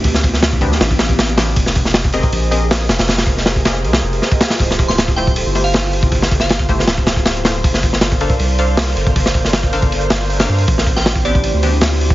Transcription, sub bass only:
\new Staff \with { instrumentName = "Sub bass" } { \clef bass \time 4/4 \key d \minor \tempo 4 = 158 d,2 a,,2 | f,,4.~ f,,16 r16 bes,,4. f,,16 f,,16~ | f,,2 c,8 f,,8 r4 | d,,2~ d,,16 g,,4.~ g,,16~ |
g,,2 d,,2 | g,,4.~ g,,16 r16 c,4. g,,16 g,,16~ | g,,2~ g,,8 g,,4 g,8 | a,,2~ a,,16 d,4.~ d,16 | }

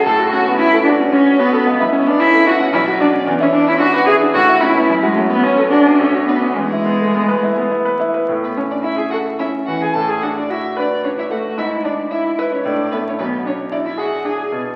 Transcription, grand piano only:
\new Staff \with { instrumentName = "Grand piano" } { \time 3/4 \key fis \minor \tempo 4 = 111 a,16 fis'16 cis'16 b16 cis'16 a'16 fis'16 cis'16 fis'16 cis''16 fis'16 a'16 | \key a \major cis,16 e'16 cis'16 b16 cis'16 a'16 e'16 cis'16 b,,16 fis'16 d'16 cis'16 | e,16 e'16 d'16 cis'16 d'16 b'16 e'16 d'16 a,16 e'16 cis'16 b16 | fis,16 fis'16 cis'16 b16 cis'16 a'16 fis'16 cis'16 d,16 fis'16 d'16 cis'16 |
e,16 e'16 b16 a16 b16 b'16 e'16 b16 e'16 b'16 e'16 b'16 | a,8 cis'8 e'8 a'8 cis'8 e8 | a,8 d'8 fis'8 b'8 d'8 a8 | gis,8 d'8 e'8 b'8 a,8 <e' a'>8 |
b,,8 d'8 e'8 gis'8 d'8 b,8 | }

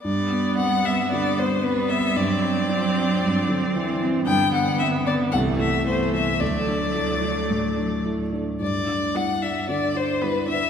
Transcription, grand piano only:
\new Staff \with { instrumentName = "Grand piano" } { \time 4/4 \key g \major \tempo 4 = 113 g,8 b8 c'8 b8 d8 b8 c'8 b8 | g,8 c'8 d'8 c'8 g,8 d8 e8 c'8 | g,8 b8 c'8 b8 c,8 a8 b8 a8 | d,8 d'8 e'8 d'8 a,8 d'8 e'8 d'8 |
g,8 d'8 e'8 d'8 d8 d'8 e'8 d'8 | }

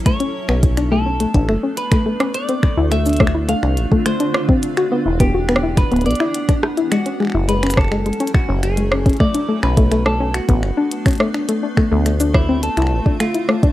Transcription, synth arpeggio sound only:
\new Staff \with { instrumentName = "Synth arpeggio sound" } { \time 4/4 \key b \minor \tempo 4 = 105 a16 cis'16 r16 b16 r16 d'16 a16 cis'16 a16 d'16 a16 cis'16 r16 a16 a16 cis'16 | r16 c'16 r16 e'16 a16 d'16 a16 e'16 a16 d'16 r16 a16 a16 d'16 r16 c'16 | r16 fis'16 b16 e'16 b16 fis'16 b16 e'16 r16 b16 b16 e'16 r16 d'16 r16 e'16 | gis16 cis'16 gis16 e'16 gis16 cis'16 r16 gis16 gis16 cis'16 r16 cis'16 r16 gis16 cis'16 cis'16 |
a16 d'16 a16 cis'16 a16 a16 a16 cis'16 r16 b16 r16 d'16 r16 cis'16 a16 d'16 | a16 d'16 a16 a16 a16 d'16 r16 c'16 r16 e'16 r16 d'16 a16 e'16 a16 d'16 | }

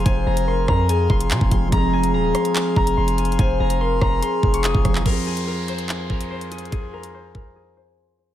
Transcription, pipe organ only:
\new Staff \with { instrumentName = "Pipe organ" } { \time 4/4 \key f \minor \tempo 4 = 144 <f c' aes' f''>1 | <f c' aes' f''>1~ | <f c' aes' f''>1 | <f, f aes' c''>1~ |
<f, f aes' c''>1 | }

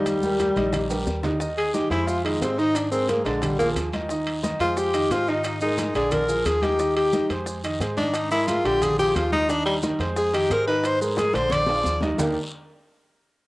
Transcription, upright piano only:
\new Staff \with { instrumentName = "Upright piano" } { \time 4/4 \key ees \major \tempo 4 = 178 <ees ees' ees''>8 <g g' bes'>4 <ees ees' ees''>4 <g g' bes'>4 <ees ees' ees''>8 | <ees ees' ees''>4 <ees ees' ees''>8 <aes aes' c''>4 <ees ees' ees''>8 <aes aes' c''>8 <ees ees' ees''>8~ | <ees ees' ees''>8 <aes aes' bes'>8 <aes aes' bes'>8 <d d' d''>4 <f f' aes'>4 <ees ees' ees''>8 | <ees ees' ees''>4 <ees ees' ees''>8 <aes aes' c''>4 <ees ees' ees''>8 <aes aes' c''>8 <ees ees' ees''>8~ |
<ees ees' ees''>8 <aes aes' bes'>8 <aes aes' bes'>8 <d d' d''>4 <f f' aes'>4 <ees ees' ees''>8 | <ees ees' ees''>4 <ees ees' ees''>8 <aes aes' c''>4 <ees ees' ees''>8 <aes aes' c''>8 <ees ees' ees''>8~ | <ees ees' ees''>8 <aes aes' bes'>8 <aes aes' bes'>8 <d d' d''>4 <f f' aes'>4 <ees ees' ees''>8 | <ees ees' ees''>4 <ees ees' ees''>8 <aes aes' c''>4 <ees ees' ees''>8 <aes aes' c''>8 <ees ees' ees''>8~ |
<ees ees' ees''>8 <aes aes' bes'>8 <aes aes' bes'>8 <d d' d''>4 <f f' aes'>4 <ees ees' ees''>8 | <ees bes d' ees' g' bes'>8 r2. r8 | }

